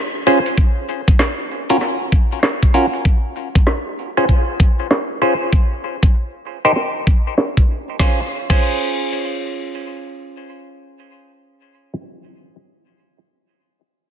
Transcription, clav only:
0.27 C#4 F4 G#4 C5
1.70 C#4 F4 F#4 A#4
2.74 C#4 F4 F#4 A#4
4.17 C#4 F4 G#4 C5
5.22 C#4 F4 G#4 C5
6.65 D#4 G4 A#4 C5
8.00 C#4 F4 G#4 C5
8.50 C#4 F4 G#4 C5

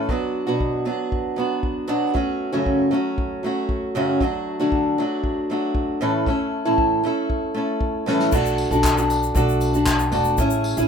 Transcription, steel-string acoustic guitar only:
0.09 F#3 B3 D4 F#4
0.47 B2 F#3 B3 D4 F#4
0.85 F#3 B3 D4 F#4
1.36 F#3 B3 D4 F#4
1.88 B2 F#3 B3 D4 F#4
2.14 F#3 A3 C#4 F#4
2.52 F#2 C#3 F#3 A3 C#4 F#4
2.91 F#3 A3 C#4 F#4
3.43 F#3 A3 C#4 F#4
3.95 F#2 C#3 F#3 A3 C#4 F#4
4.21 F#3 A3 D4 F#4
4.60 D3 F#3 A3 D4 F#4
4.98 F#3 A3 D4 F#4
5.50 F#3 A3 D4 F#4
6.01 A2 E3 A3 C#4 E4 A4
6.27 A3 C#4 E4 A4
6.65 A2 E3 A3 C#4 E4 A4
7.03 A3 C#4 E4 A4
7.54 A3 C#4 E4 A4
8.06 A2 E3 A3 C#4 E4 A4
8.32 A3 D4 F#4 A4
8.71 D4 F#4 A4
8.97 D4 F#4 A4
9.35 A3 D4 F#4 A4
9.73 D4 F#4 A4
10.12 A3 D4 F#4 A4
10.38 A3 C#4 E4 G#4
10.77 C#4 E4 G#4

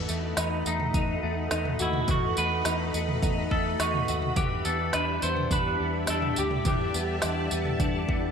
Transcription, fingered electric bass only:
0.09 E2
0.37 E2
0.66 E2
0.94 E2
1.23 E2
1.51 E2
1.80 D#2
2.08 E2
2.38 E2
2.66 E2
2.94 E2
3.23 E2
3.51 E2
3.80 E2
4.09 D#2
4.37 E2
4.65 E2
4.94 E2
5.23 E2
5.51 E2
5.80 E2
6.08 E2
6.38 D2
6.65 E2
6.94 E2
7.23 E2
7.52 E2
7.80 E2
8.09 E2

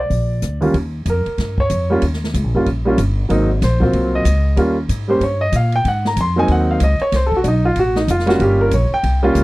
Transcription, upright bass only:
0.10 A#1
0.42 D2
0.74 D#2
1.06 F2
1.26 muted upright bass stroke
1.38 G2
1.70 F2
2.02 D#2
2.34 C#2
2.44 A#1
2.54 G1
2.66 A#1
2.98 G1
3.30 G#1
3.62 A#1
3.94 C2
4.25 C#2
4.57 D#2
4.89 G#2
5.20 G2
5.52 A#2
5.85 G#2
6.16 F2
6.48 D#2
6.80 C#2
7.00 muted upright bass stroke
7.12 C2
7.44 B1
7.76 A1
8.08 F1
8.39 G1
8.72 A#1
8.90 muted upright bass stroke
9.03 C2
9.35 C#2

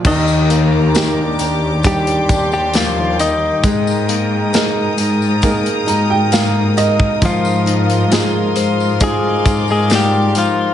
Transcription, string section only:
0.07 G4 G5 A#5 D6
1.86 C6
3.64 A#4 A#5 D#6
7.22 F5 C6
9.01 D6

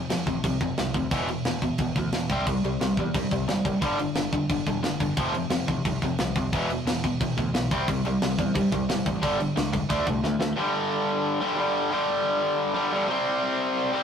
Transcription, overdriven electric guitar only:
0.10 F2 C3
0.27 F2 C3
0.44 F2 C3
0.61 F2 C3
0.79 F2 C3
0.95 F2 C3
1.12 E2 B2 E3
1.28 E2 B2
1.46 E2 B2
1.63 E2 B2
1.80 E2 B2
1.97 E2 B2
2.14 E2 B2
2.31 C3 G3 C4
2.46 C3 G3
2.65 C3 G3
2.82 C3 G3
2.99 C3 G3
3.15 C3 G3
3.32 C3 G3
3.48 C3 G3
3.65 C3 G3
3.81 G2 D3 G3
3.99 G2 D3
4.16 G2 D3
4.33 G2 D3
4.50 G2 D3
4.67 G2 D3
4.83 G2 D3
5.01 G2 D3
5.17 F2 C3 F3
5.34 F2 C3
5.51 F2 C3
5.68 F2 C3
5.86 F2 C3
6.03 F2 C3
6.20 F2 C3
6.36 F2 C3
6.53 E2 B2 E3
6.70 E2 B2
6.87 E2 B2
7.04 E2 B2
7.21 E2 B2
7.38 E2 B2
7.54 E2 B2
7.72 C3 G3 C4
7.89 C3 G3
8.06 C3 G3
8.22 C3 G3
8.39 C3 G3
8.55 C3 G3
8.72 C3 G3
8.89 C3 G3
9.06 C3 G3
9.22 G2 D3 G3
9.39 G2 D3
9.56 G2 D3
9.73 G2 D3
9.90 D3 A3 D4
10.07 D3 A3
10.24 D3 A3
10.40 D3 A3
10.57 G2 D3 G3
11.40 G2 D3 G3
11.56 G2 D3 G3
11.91 G2 D3 G3
12.74 G2 D3 G3
12.92 G2 D3 G3
13.09 C3 G3 C4
13.92 C3 G3 C4

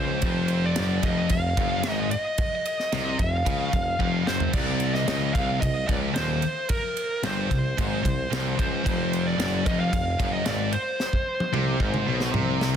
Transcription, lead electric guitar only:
Already playing: C5
0.66 D5
1.04 D#5
1.31 F5
1.92 D#5
2.11 D#5
3.19 F5
4.27 C5
4.54 D5
4.94 D#5
5.34 F5
5.61 D#5
5.88 D5
6.14 C5
6.70 A#4
7.25 C5
8.59 C5
9.27 D5
9.67 D#5
9.80 F5
9.93 F5
10.33 D#5
10.46 D5
10.73 C5

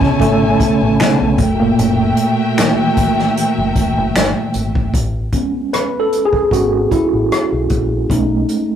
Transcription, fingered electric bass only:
0.20 G#1
0.81 A1
1.21 B1
1.39 F#1
1.79 F#1
3.58 F#1
3.76 E1
3.97 F#1
4.16 G1
4.55 G#1
4.94 A1
6.52 G#1
7.13 A1
7.52 B1
7.71 A#1
8.10 B1

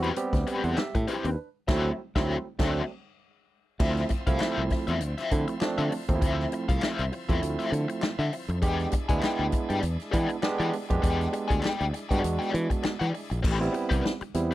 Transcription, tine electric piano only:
0.17 G3 B3 C4 G4
0.64 A4 F#5
0.77 G4 E5
1.08 E4 C5
1.26 D4 B4
1.68 F#3 A3 C4 E4
2.16 F#3 A3 C4 E4
2.59 F#3 A3 C4 D4
3.80 F3 A3 C4 E4
4.27 F3 A3 C4 E4
5.31 F3 A3 C4 E4
5.61 F3 A3 C4 D4
6.08 F3 A3 C4 D#4
6.15 E4
7.29 F3 A3 C4 E4
8.62 G#3 B3 D4 G4
9.09 G#3 B3 D4 E4
10.13 G#3 B3 D4 E4
10.43 G#3 B3 D4 G4
10.90 G#3 B3 D4 G4
12.11 G#3 B3 D4 F#4
13.61 G3 B3 C4 E4
14.35 G3 B3 C4 E4

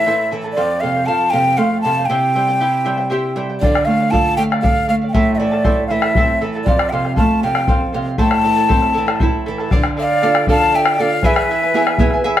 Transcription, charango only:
0.06 E4 A4 C5 E5 A5
0.31 E4 A4 E5 A5
0.44 E4 A4 A5
0.56 A4 C5 F5
0.82 A4 C5 F5
0.94 C5 F5
1.06 A4 C5 F5
1.32 A4 C5 F5
1.45 C5 F5
1.58 A4 C5 F5
1.85 A4 C5 F5
1.97 C5 F5
2.09 E4 G4 C5 E5 G5
2.34 E4 C5 E5 G5
2.48 E4 C5 G5
2.60 E4 G4 C5 E5 G5
2.85 E4 C5 E5 G5
2.97 E4 C5 G5
3.10 E4 G4 C5 E5 G5
3.36 E4 C5 E5 G5
3.49 E4 C5 G5
3.63 A4 D5 F5
3.89 A4 D5 F5
4.00 D5 F5
4.12 A4 D5 F5
4.38 A4 D5 F5
4.50 D5 F5
4.63 A4 D5 F5
4.88 A4 D5 F5
5.02 D5 F5
5.14 E4 A4 C5 E5 A5
5.40 E4 A4 E5 A5
5.52 E4 A4 A5
5.64 E4 A4 C5 E5 A5
5.89 E4 A4 E5 A5
6.04 E4 A4 A5
6.16 E4 A4 C5 E5 A5
6.41 E4 A4 E5 A5
6.55 E4 A4 A5
6.68 A4 C5 F5
6.92 A4 C5 F5
7.04 C5 F5
7.16 A4 C5 F5
7.43 A4 C5 F5
7.56 C5 F5
7.67 A4 C5 F5
7.93 A4 C5 F5
8.05 C5 F5
8.18 E4 A4 C5 E5 A5
8.44 E4 A4 E5 A5
8.56 E4 A4 A5
8.68 E4 A4 C5 E5 A5
8.93 E4 A4 E5 A5
9.06 E4 A4 A5
9.20 E4 A4 C5 E5 A5
9.46 E4 A4 E5 A5
9.59 E4 A4 A5
9.71 A4 D5 F5
9.97 A4 D5 F5
10.11 D5 F5
10.22 A4 D5 F5
10.48 A4 D5 F5
10.62 D5 F5
10.74 A4 D5 F5
10.98 A4 D5 F5
11.11 D5 F5
11.24 E4 G#4 B4 E5 G#5
11.50 E4 B4 E5 G#5
11.62 E4 B4 G#5
11.76 E4 G#4 B4 E5 G#5
11.99 E4 B4 E5 G#5
12.14 E4 B4 G#5
12.24 E4 G#4 B4 E5 G#5

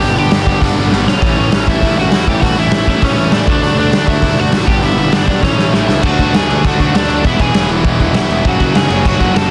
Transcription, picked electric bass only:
0.02 G1
0.17 G1
0.32 G1
0.47 G1
0.62 G1
0.78 G1
0.92 G1
1.07 B1
1.22 A1
1.39 A1
1.51 A1
1.68 A1
1.82 A1
1.96 A1
2.12 E2
2.27 A1
2.43 A1
2.58 A1
2.71 A1
2.87 A1
3.02 A1
3.16 A1
3.31 A1
3.47 D2
3.61 D2
3.76 D2
3.92 D2
4.08 D2
4.23 D2
4.36 D2
4.52 A1
4.68 G1
4.82 G1
4.99 G1
5.14 G1
5.28 B1
5.43 A1
5.57 A1
5.74 A1
5.89 C#2
6.03 D2
6.20 D2
6.35 D2
6.51 D2
6.64 D2
6.79 D2
6.94 D2
7.09 D2
7.25 E1
7.40 E1
7.54 E1
7.69 E1
7.85 E1
8.01 E1
8.14 B1
8.29 E1
8.45 F#1
8.61 F#1
8.74 F#1
8.90 F#1
9.06 F#1
9.21 F#1
9.35 F#1

